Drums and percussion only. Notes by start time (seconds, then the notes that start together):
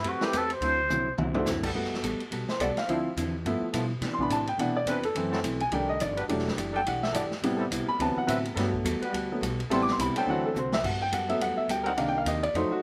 0.04 ride
0.21 snare
0.33 hi-hat pedal, ride
0.50 ride
0.62 ride
0.90 hi-hat pedal, mid tom
1.18 mid tom
1.34 floor tom
1.46 snare, hi-hat pedal
1.63 kick, crash
1.84 snare
1.94 snare
2.04 hi-hat pedal, ride
2.20 ride
2.32 ride
2.48 snare
2.60 hi-hat pedal, ride
2.77 snare, ride
2.89 ride
3.17 hi-hat pedal, ride
3.46 ride
3.73 hi-hat pedal, ride
4.02 snare, ride
4.19 kick
4.30 hi-hat pedal, ride
4.47 ride
4.59 ride
4.87 hi-hat pedal, ride
5.03 ride
5.15 ride
5.33 snare
5.44 hi-hat pedal, ride
5.60 ride
5.72 ride
6.00 hi-hat pedal, ride
6.17 ride
6.29 ride
6.39 snare
6.48 snare
6.58 hi-hat pedal, ride
6.86 ride
7.03 snare
7.14 hi-hat pedal, ride
7.31 snare
7.43 ride
7.72 hi-hat pedal, ride
8.00 ride
8.28 hi-hat pedal, ride
8.45 ride
8.57 snare, ride
8.74 kick
8.85 hi-hat pedal, ride
9.02 ride
9.14 ride
9.43 hi-hat pedal, ride
9.60 ride
9.71 ride
9.87 snare
9.99 hi-hat pedal, ride
10.16 ride
10.56 hi-hat pedal
10.72 snare
10.84 kick, crash
11.12 hi-hat pedal, ride
11.29 ride
11.41 ride
11.69 hi-hat pedal, ride
11.86 ride
11.97 ride
12.26 hi-hat pedal, ride
12.43 ride
12.55 ride